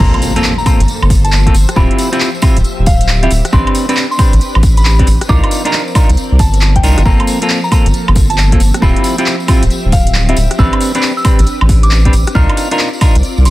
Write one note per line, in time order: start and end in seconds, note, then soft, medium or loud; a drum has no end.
0.00 0.11 G1 loud
0.00 3.49 F3 medium
0.00 0.33 A#3 medium
0.00 1.74 A#3 medium
0.00 0.33 C4 medium
0.00 0.33 F4 medium
0.00 1.74 A4 medium
0.00 0.33 A4 loud
0.00 3.49 C5 medium
0.00 0.21 A#5 medium
0.00 kick loud
0.00 crash loud
0.00 tambourine medium
0.00 impact medium
0.14 closed hi-hat soft
0.14 high woodblock medium
0.22 open hi-hat loud
0.22 tambourine medium
0.36 0.52 A#3 medium
0.36 0.52 C4 medium
0.36 0.52 F4 medium
0.36 0.52 A4 loud
0.36 closed hi-hat medium
0.36 tambourine soft
0.44 clap loud
0.44 tambourine medium
0.58 0.79 A#5 medium
0.58 tambourine soft
0.66 0.80 A#3 medium
0.66 0.80 C4 medium
0.66 0.80 F4 medium
0.66 0.80 A4 medium
0.66 kick loud
0.66 open hi-hat loud
0.66 tambourine loud
0.66 high woodblock medium
0.80 0.86 G1 medium
0.80 closed hi-hat medium
0.80 tambourine soft
0.88 closed hi-hat soft
0.88 tambourine medium
1.02 1.51 G1 medium
1.02 high woodblock medium
1.10 kick loud
1.10 open hi-hat loud
1.10 tambourine medium
1.24 1.45 A5 medium
1.24 closed hi-hat medium
1.24 tambourine soft
1.32 clap loud
1.32 tambourine medium
1.46 1.54 A#3 medium
1.46 1.54 C4 medium
1.46 1.54 F4 medium
1.46 1.54 A4 medium
1.46 kick medium
1.46 closed hi-hat medium
1.54 1.65 G1 loud
1.54 open hi-hat loud
1.54 tambourine loud
1.69 cross-stick medium
1.69 closed hi-hat medium
1.69 tambourine soft
1.76 1.88 D1 loud
1.76 2.09 C4 medium
1.76 2.09 E4 medium
1.76 2.09 F4 medium
1.76 5.26 G4 medium
1.76 2.09 G4 loud
1.76 3.51 E5 medium
1.76 1.93 B5 medium
1.76 kick loud
1.76 tambourine medium
1.91 closed hi-hat soft
1.98 open hi-hat loud
1.98 tambourine medium
2.12 2.29 C4 medium
2.12 2.29 E4 medium
2.12 2.29 F4 medium
2.12 2.29 G4 loud
2.12 closed hi-hat medium
2.12 tambourine soft
2.20 clap loud
2.20 tambourine medium
2.35 tambourine soft
2.42 2.57 C4 medium
2.42 2.57 E4 medium
2.42 2.57 F4 medium
2.42 2.57 G4 medium
2.42 kick loud
2.42 open hi-hat loud
2.42 tambourine loud
2.42 high woodblock medium
2.57 2.63 D1 loud
2.57 closed hi-hat medium
2.57 tambourine soft
2.64 closed hi-hat soft
2.64 tambourine medium
2.79 3.28 D1 medium
2.86 3.08 F5 medium
2.86 kick loud
2.86 open hi-hat loud
2.86 tambourine medium
3.01 closed hi-hat medium
3.01 tambourine soft
3.08 clap loud
3.08 tambourine medium
3.23 3.31 C4 medium
3.23 3.31 E4 medium
3.23 3.31 F4 medium
3.23 3.31 G4 loud
3.23 3.44 E5 medium
3.23 closed hi-hat soft
3.31 3.42 D1 loud
3.31 open hi-hat loud
3.31 tambourine medium
3.45 cross-stick medium
3.45 closed hi-hat medium
3.45 tambourine soft
3.52 3.64 A1 loud
3.52 3.86 C4 medium
3.52 5.27 C4 medium
3.52 3.86 D4 medium
3.52 5.27 D4 medium
3.52 3.86 G4 medium
3.52 5.27 B4 loud
3.52 3.86 B4 loud
3.52 3.74 C6 loud
3.52 kick loud
3.52 tambourine medium
3.67 closed hi-hat soft
3.67 high woodblock medium
3.75 open hi-hat loud
3.75 tambourine loud
3.89 4.05 C4 medium
3.89 4.05 D4 medium
3.89 4.05 G4 medium
3.89 4.05 B4 loud
3.89 closed hi-hat medium
3.89 tambourine soft
3.97 clap loud
3.97 tambourine medium
4.11 4.32 C6 medium
4.11 tambourine soft
4.19 4.33 C4 medium
4.19 4.33 D4 medium
4.19 4.33 G4 medium
4.19 4.33 B4 medium
4.19 kick loud
4.19 open hi-hat loud
4.19 tambourine loud
4.19 high woodblock medium
4.33 4.39 A1 medium
4.33 closed hi-hat medium
4.33 tambourine soft
4.41 closed hi-hat soft
4.41 tambourine medium
4.55 5.05 A1 medium
4.55 high woodblock medium
4.63 kick loud
4.63 open hi-hat loud
4.63 tambourine loud
4.77 4.98 B5 loud
4.77 closed hi-hat medium
4.77 tambourine soft
4.85 clap loud
4.85 tambourine medium
4.99 5.07 C4 medium
4.99 5.07 D4 medium
4.99 5.07 G4 medium
4.99 5.07 B4 loud
4.99 kick medium
4.99 closed hi-hat medium
5.07 5.18 A1 loud
5.07 open hi-hat loud
5.07 tambourine medium
5.21 cross-stick medium
5.21 closed hi-hat medium
5.21 tambourine soft
5.29 5.40 C2 loud
5.29 10.55 F3 medium
5.29 7.04 C4 medium
5.29 5.62 D4 medium
5.29 5.62 D#4 medium
5.29 5.62 F4 medium
5.29 7.04 A#4 loud
5.29 5.62 A#4 loud
5.29 7.04 D5 medium
5.29 5.46 D6 medium
5.29 kick loud
5.29 tambourine medium
5.44 closed hi-hat soft
5.44 high woodblock medium
5.51 open hi-hat loud
5.51 tambourine medium
5.65 5.82 D4 medium
5.65 5.82 D#4 medium
5.65 5.82 F4 medium
5.65 5.82 A#4 loud
5.65 closed hi-hat medium
5.65 tambourine soft
5.73 clap loud
5.73 tambourine medium
5.88 tambourine soft
5.95 6.10 D4 medium
5.95 6.10 D#4 medium
5.95 6.10 F4 medium
5.95 6.10 A#4 medium
5.95 kick loud
5.95 open hi-hat loud
5.95 tambourine loud
5.95 high woodblock medium
6.09 6.16 C2 loud
6.09 closed hi-hat medium
6.09 tambourine soft
6.17 closed hi-hat soft
6.17 tambourine medium
6.32 6.41 C2 medium
6.39 6.81 G1 medium
6.39 6.61 A5 medium
6.39 kick loud
6.39 open hi-hat loud
6.39 tambourine medium
6.54 closed hi-hat medium
6.54 tambourine soft
6.61 clap loud
6.61 tambourine medium
6.76 6.97 G5 loud
6.76 kick medium
6.76 closed hi-hat medium
6.83 6.95 C2 medium
6.83 7.02 D4 loud
6.83 7.02 D#4 medium
6.83 7.02 F4 medium
6.83 7.02 A#4 loud
6.83 open hi-hat medium
6.83 tambourine loud
6.98 7.04 G1 loud
6.98 cross-stick medium
6.98 closed hi-hat medium
6.98 tambourine soft
7.05 7.17 G1 loud
7.05 7.39 A#3 medium
7.05 8.80 A#3 medium
7.05 7.39 C4 medium
7.05 12.31 C4 medium
7.05 7.39 F4 medium
7.05 7.39 A4 loud
7.05 8.80 A4 medium
7.05 7.27 A#5 loud
7.05 kick loud
7.05 tambourine medium
7.20 closed hi-hat soft
7.20 high woodblock medium
7.27 open hi-hat loud
7.27 tambourine loud
7.42 7.58 A#3 medium
7.42 7.58 C4 medium
7.42 7.58 F4 medium
7.42 7.58 A4 medium
7.42 closed hi-hat medium
7.42 tambourine soft
7.50 clap loud
7.50 tambourine soft
7.64 7.85 A#5 loud
7.64 tambourine soft
7.71 7.86 A#3 medium
7.71 7.86 C4 medium
7.71 7.86 F4 medium
7.71 7.86 A4 medium
7.71 kick loud
7.71 open hi-hat loud
7.71 tambourine medium
7.71 high woodblock medium
7.86 7.92 G1 medium
7.86 closed hi-hat medium
7.86 tambourine soft
7.94 closed hi-hat soft
7.94 tambourine medium
8.08 8.57 G1 medium
8.08 high woodblock medium
8.15 kick loud
8.15 open hi-hat loud
8.15 tambourine loud
8.30 8.51 A5 loud
8.30 closed hi-hat medium
8.30 tambourine soft
8.38 clap loud
8.38 tambourine medium
8.52 8.60 A#3 medium
8.52 8.60 C4 medium
8.52 8.60 F4 medium
8.52 8.60 A4 medium
8.52 kick medium
8.52 closed hi-hat medium
8.60 8.71 G1 loud
8.60 open hi-hat loud
8.60 tambourine medium
8.74 cross-stick medium
8.74 closed hi-hat medium
8.74 tambourine soft
8.82 8.93 D1 loud
8.82 9.15 C4 medium
8.82 9.15 E4 medium
8.82 9.15 F4 medium
8.82 12.32 G4 loud
8.82 9.15 G4 loud
8.82 10.57 E5 medium
8.82 8.98 B5 medium
8.82 kick loud
8.82 tambourine medium
8.96 closed hi-hat soft
9.04 open hi-hat loud
9.04 tambourine medium
9.18 9.35 C4 medium
9.18 9.35 E4 medium
9.18 9.35 F4 medium
9.18 9.35 G4 loud
9.18 closed hi-hat medium
9.18 tambourine soft
9.26 clap loud
9.26 tambourine medium
9.40 tambourine soft
9.48 9.63 C4 medium
9.48 9.63 E4 medium
9.48 9.63 F4 medium
9.48 9.63 G4 loud
9.48 kick loud
9.48 open hi-hat loud
9.48 tambourine loud
9.48 high woodblock medium
9.62 9.69 D1 medium
9.62 closed hi-hat medium
9.62 tambourine soft
9.70 closed hi-hat soft
9.70 tambourine medium
9.85 10.34 D1 medium
9.92 10.14 F5 loud
9.92 kick loud
9.92 open hi-hat loud
9.92 tambourine medium
10.07 closed hi-hat medium
10.07 tambourine soft
10.14 clap loud
10.14 tambourine soft
10.29 10.37 C4 medium
10.29 10.37 E4 medium
10.29 10.37 F4 medium
10.29 10.37 G4 loud
10.29 10.50 E5 loud
10.29 closed hi-hat medium
10.36 10.48 D1 loud
10.36 open hi-hat loud
10.36 tambourine medium
10.51 cross-stick medium
10.51 closed hi-hat medium
10.51 tambourine soft
10.58 10.70 A1 loud
10.58 10.92 C4 loud
10.58 12.33 D4 medium
10.58 10.92 D4 medium
10.58 10.92 G4 medium
10.58 12.33 B4 medium
10.58 10.92 B4 loud
10.58 10.80 E6 loud
10.58 kick loud
10.58 tambourine medium
10.73 closed hi-hat soft
10.73 high woodblock medium
10.81 open hi-hat loud
10.81 tambourine medium
10.95 11.11 C4 medium
10.95 11.11 D4 medium
10.95 11.11 G4 medium
10.95 11.11 B4 loud
10.95 closed hi-hat medium
10.95 tambourine soft
11.02 clap loud
11.02 tambourine medium
11.17 11.38 E6 medium
11.17 tambourine soft
11.25 11.39 C4 medium
11.25 11.39 D4 medium
11.25 11.39 G4 medium
11.25 11.39 B4 medium
11.25 kick loud
11.25 open hi-hat loud
11.25 tambourine medium
11.25 high woodblock medium
11.39 11.45 A1 medium
11.39 closed hi-hat medium
11.39 tambourine soft
11.46 closed hi-hat soft
11.46 tambourine soft
11.61 12.10 A1 medium
11.61 high woodblock medium
11.69 kick loud
11.69 open hi-hat loud
11.69 tambourine medium
11.83 12.04 D6 medium
11.83 closed hi-hat medium
11.83 tambourine soft
11.91 clap loud
11.91 tambourine medium
12.05 12.13 C4 medium
12.05 12.13 D4 medium
12.05 12.13 G4 medium
12.05 12.13 B4 medium
12.05 kick medium
12.05 closed hi-hat medium
12.13 12.24 A1 loud
12.13 open hi-hat loud
12.13 tambourine medium
12.27 cross-stick medium
12.27 closed hi-hat medium
12.27 tambourine soft
12.35 12.46 C2 loud
12.35 13.50 C4 medium
12.35 12.68 D4 medium
12.35 12.68 D#4 medium
12.35 13.50 F4 medium
12.35 12.68 F4 medium
12.35 13.50 A#4 loud
12.35 12.68 A#4 loud
12.35 13.50 D5 medium
12.35 12.51 F6 medium
12.35 kick loud
12.35 tambourine soft
12.49 closed hi-hat soft
12.49 high woodblock medium
12.57 cross-stick soft
12.57 open hi-hat loud
12.57 tambourine medium
12.71 12.88 D4 medium
12.71 12.88 D#4 medium
12.71 12.88 F4 medium
12.71 12.88 A#4 loud
12.71 closed hi-hat medium
12.71 tambourine soft
12.79 clap loud
12.79 tambourine soft
12.93 tambourine soft
13.01 13.16 D4 medium
13.01 13.16 D#4 medium
13.01 13.16 F4 medium
13.01 13.16 A#4 medium
13.01 kick loud
13.01 open hi-hat loud
13.01 tambourine medium
13.01 high woodblock medium
13.15 13.22 C2 medium
13.15 closed hi-hat medium
13.15 tambourine soft
13.23 closed hi-hat soft
13.23 tambourine medium
13.38 13.47 C2 medium
13.38 tambourine soft
13.45 13.50 G1 medium
13.45 13.50 C6 medium
13.45 open hi-hat loud
13.45 tambourine medium